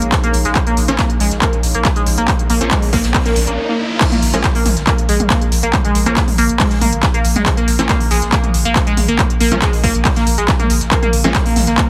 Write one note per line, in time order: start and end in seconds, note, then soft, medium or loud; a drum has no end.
0.00 0.12 A#1 medium
0.00 3.58 D#4 medium
0.00 3.58 G#4 medium
0.00 3.58 C#5 medium
0.00 3.58 F5 medium
0.00 closed hi-hat medium
0.12 kick loud
0.12 snare loud
0.12 clap loud
0.12 closed hi-hat medium
0.23 0.27 A#3 loud
0.23 closed hi-hat medium
0.33 0.44 A#1 loud
0.33 closed hi-hat medium
0.33 open hi-hat loud
0.45 0.55 A#1 medium
0.45 0.51 G#3 medium
0.45 snare soft
0.45 closed hi-hat medium
0.55 kick loud
0.55 clap loud
0.55 closed hi-hat medium
0.55 riser medium
0.67 0.70 A#3 loud
0.67 closed hi-hat medium
0.77 0.87 A#1 loud
0.77 closed hi-hat medium
0.77 open hi-hat loud
0.88 0.98 A#1 medium
0.88 0.96 F3 loud
0.88 0.96 A#3 medium
0.88 0.96 C#4 loud
0.88 closed hi-hat medium
0.99 1.03 A#3 loud
0.99 kick loud
0.99 snare loud
0.99 clap loud
0.99 closed hi-hat medium
0.99 closed hi-hat loud
1.10 closed hi-hat medium
1.20 1.31 A#1 loud
1.20 1.26 G#3 medium
1.20 snare soft
1.20 closed hi-hat medium
1.20 open hi-hat loud
1.31 1.42 A#1 medium
1.31 snare soft
1.31 closed hi-hat medium
1.42 1.46 A#3 loud
1.42 kick loud
1.42 clap loud
1.42 closed hi-hat medium
1.53 closed hi-hat medium
1.63 1.74 A#1 loud
1.63 closed hi-hat medium
1.63 open hi-hat loud
1.74 1.85 A#1 medium
1.74 1.78 A#3 loud
1.74 closed hi-hat medium
1.85 kick loud
1.85 snare loud
1.85 clap loud
1.85 closed hi-hat medium
1.96 2.02 G#3 medium
1.96 closed hi-hat medium
2.06 2.17 A#1 loud
2.06 closed hi-hat medium
2.06 open hi-hat medium
2.18 2.28 A#1 medium
2.18 2.21 A#3 loud
2.18 closed hi-hat medium
2.28 kick loud
2.28 clap loud
2.28 closed hi-hat medium
2.28 closed hi-hat loud
2.39 closed hi-hat medium
2.50 2.60 A#1 loud
2.50 2.54 A#3 loud
2.50 closed hi-hat medium
2.50 open hi-hat loud
2.61 2.71 A#1 medium
2.61 2.69 F3 medium
2.61 2.69 A#3 medium
2.61 2.69 C#4 medium
2.61 closed hi-hat medium
2.71 2.77 G#3 medium
2.71 kick loud
2.71 snare loud
2.71 clap loud
2.71 closed hi-hat medium
2.82 open hi-hat medium
2.93 3.03 A#1 loud
2.93 2.97 A#3 loud
2.93 kick medium
2.93 snare loud
2.93 closed hi-hat medium
2.93 open hi-hat loud
3.04 3.14 A#1 medium
3.04 snare loud
3.04 closed hi-hat medium
3.14 kick loud
3.14 clap loud
3.14 closed hi-hat medium
3.14 open hi-hat medium
3.25 3.29 A#3 loud
3.25 snare medium
3.25 closed hi-hat medium
3.36 3.47 A#1 loud
3.36 closed hi-hat medium
3.36 open hi-hat loud
3.47 3.57 A#1 medium
3.47 3.53 A#3 medium
3.47 closed hi-hat medium
3.69 3.73 A#3 medium
4.01 kick loud
4.01 clap loud
4.01 closed hi-hat medium
4.01 crash loud
4.12 4.16 A#3 loud
4.12 closed hi-hat medium
4.12 mid tom medium
4.22 4.33 A#1 loud
4.22 closed hi-hat medium
4.22 open hi-hat loud
4.33 4.44 A#1 medium
4.33 4.41 F3 loud
4.33 4.39 G#3 medium
4.33 4.41 A#3 medium
4.33 4.41 C#4 loud
4.33 closed hi-hat medium
4.43 kick loud
4.43 snare loud
4.43 clap loud
4.43 closed hi-hat medium
4.55 4.59 A#3 loud
4.55 open hi-hat medium
4.65 4.76 A#1 loud
4.65 snare soft
4.65 closed hi-hat medium
4.65 open hi-hat loud
4.65 mid tom medium
4.77 4.87 A#1 medium
4.77 snare medium
4.77 closed hi-hat medium
4.87 4.91 A#3 loud
4.87 kick loud
4.87 clap loud
4.87 closed hi-hat medium
4.98 closed hi-hat medium
5.09 5.19 A#1 loud
5.09 5.15 G#3 medium
5.09 closed hi-hat medium
5.09 open hi-hat loud
5.20 5.30 A#1 medium
5.20 closed hi-hat medium
5.20 mid tom medium
5.30 5.34 A#3 loud
5.30 kick loud
5.30 snare loud
5.30 clap loud
5.30 closed hi-hat medium
5.42 closed hi-hat medium
5.52 5.62 A#1 loud
5.52 closed hi-hat medium
5.52 open hi-hat loud
5.63 5.73 A#1 medium
5.63 5.67 A#3 loud
5.63 closed hi-hat medium
5.73 kick loud
5.73 clap loud
5.73 closed hi-hat medium
5.73 mid tom medium
5.85 5.90 G#3 medium
5.85 closed hi-hat medium
5.95 6.06 A#1 loud
5.95 closed hi-hat medium
5.95 open hi-hat loud
6.06 6.16 A#1 medium
6.06 6.14 F3 medium
6.06 6.10 A#3 loud
6.06 6.14 A#3 medium
6.06 6.14 C#4 medium
6.06 closed hi-hat medium
6.17 kick loud
6.17 snare loud
6.17 clap loud
6.17 closed hi-hat medium
6.28 open hi-hat medium
6.28 mid tom medium
6.38 6.49 A#1 loud
6.38 6.42 A#3 loud
6.38 closed hi-hat medium
6.38 open hi-hat loud
6.49 6.60 A#1 medium
6.49 closed hi-hat medium
6.60 6.66 G#3 medium
6.60 kick loud
6.60 clap loud
6.60 closed hi-hat medium
6.60 open hi-hat medium
6.71 snare soft
6.71 closed hi-hat medium
6.81 6.92 A#1 loud
6.81 6.85 A#3 loud
6.81 closed hi-hat medium
6.81 open hi-hat loud
6.81 mid tom medium
6.92 7.03 A#1 medium
6.92 closed hi-hat medium
7.03 kick loud
7.03 snare loud
7.03 clap loud
7.03 closed hi-hat medium
7.14 7.18 A#3 loud
7.14 closed hi-hat medium
7.24 7.35 A#1 loud
7.24 closed hi-hat medium
7.24 open hi-hat loud
7.36 7.46 A#1 medium
7.36 7.41 G#3 medium
7.36 snare soft
7.36 closed hi-hat medium
7.36 mid tom medium
7.46 kick loud
7.46 clap loud
7.46 closed hi-hat medium
7.46 closed hi-hat loud
7.57 7.61 A#3 loud
7.57 closed hi-hat medium
7.68 7.78 A#1 loud
7.68 closed hi-hat medium
7.68 open hi-hat loud
7.79 7.89 A#1 medium
7.79 7.87 F3 loud
7.79 7.87 A#3 medium
7.79 7.87 C#4 loud
7.79 closed hi-hat medium
7.89 7.93 A#3 loud
7.89 kick loud
7.89 snare loud
7.89 clap loud
7.89 closed hi-hat medium
7.89 mid tom medium
8.00 open hi-hat medium
8.11 8.21 A#1 loud
8.11 8.17 G#3 medium
8.11 snare soft
8.11 closed hi-hat medium
8.11 open hi-hat loud
8.22 8.32 A#1 medium
8.22 snare soft
8.22 closed hi-hat medium
8.32 8.36 A#3 loud
8.32 kick loud
8.32 clap loud
8.32 closed hi-hat medium
8.44 closed hi-hat medium
8.44 mid tom medium
8.54 8.65 A#1 loud
8.54 closed hi-hat medium
8.54 open hi-hat loud
8.65 8.75 A#1 medium
8.65 8.69 A#3 loud
8.65 closed hi-hat medium
8.76 kick loud
8.76 snare loud
8.76 clap loud
8.76 closed hi-hat medium
8.87 8.92 G#3 medium
8.87 closed hi-hat medium
8.97 9.08 A#1 loud
8.97 closed hi-hat medium
8.97 open hi-hat loud
8.97 mid tom medium
9.08 9.19 A#1 medium
9.08 9.12 A#3 loud
9.08 closed hi-hat medium
9.19 kick loud
9.19 clap loud
9.19 closed hi-hat medium
9.30 closed hi-hat medium
9.40 9.51 A#1 loud
9.40 9.44 A#3 loud
9.40 closed hi-hat medium
9.40 open hi-hat loud
9.52 9.62 A#1 medium
9.52 9.59 F3 medium
9.52 9.59 A#3 medium
9.52 9.59 C#4 medium
9.52 closed hi-hat medium
9.52 mid tom medium
9.62 9.68 G#3 medium
9.62 kick loud
9.62 snare loud
9.62 clap loud
9.62 closed hi-hat medium
9.73 open hi-hat medium
9.84 9.94 A#1 loud
9.84 9.88 A#3 loud
9.84 kick medium
9.84 closed hi-hat medium
9.84 open hi-hat loud
9.95 10.05 A#1 medium
9.95 closed hi-hat medium
10.05 kick loud
10.05 clap loud
10.05 closed hi-hat medium
10.05 open hi-hat medium
10.05 mid tom medium
10.16 10.20 A#3 loud
10.16 snare soft
10.16 closed hi-hat medium
10.27 10.37 A#1 loud
10.27 closed hi-hat medium
10.27 open hi-hat loud
10.38 10.48 A#1 medium
10.38 10.43 G#3 medium
10.38 closed hi-hat medium
10.48 kick loud
10.48 snare loud
10.48 clap loud
10.48 closed hi-hat medium
10.59 10.63 A#3 loud
10.59 closed hi-hat medium
10.59 mid tom medium
10.70 10.80 A#1 loud
10.70 closed hi-hat medium
10.70 open hi-hat loud
10.81 10.91 A#1 medium
10.81 snare soft
10.81 closed hi-hat medium
10.91 10.95 A#3 medium
10.91 kick loud
10.91 clap loud
10.91 closed hi-hat medium
11.03 11.06 A#3 loud
11.03 closed hi-hat medium
11.03 mid tom medium
11.13 11.24 A#1 loud
11.13 closed hi-hat medium
11.13 open hi-hat loud
11.24 11.34 A#1 medium
11.24 11.32 F3 loud
11.24 11.30 G#3 medium
11.24 11.32 A#3 medium
11.24 11.32 C#4 loud
11.24 closed hi-hat medium
11.35 kick loud
11.35 snare loud
11.35 clap loud
11.35 closed hi-hat medium
11.46 11.50 A#3 loud
11.46 open hi-hat medium
11.56 11.67 A#1 loud
11.56 snare soft
11.56 closed hi-hat medium
11.56 open hi-hat loud
11.56 mid tom medium
11.67 11.78 A#1 medium
11.67 11.71 A#3 medium
11.67 snare medium
11.67 closed hi-hat medium
11.78 11.82 A#3 loud
11.78 kick loud
11.78 clap loud
11.78 closed hi-hat medium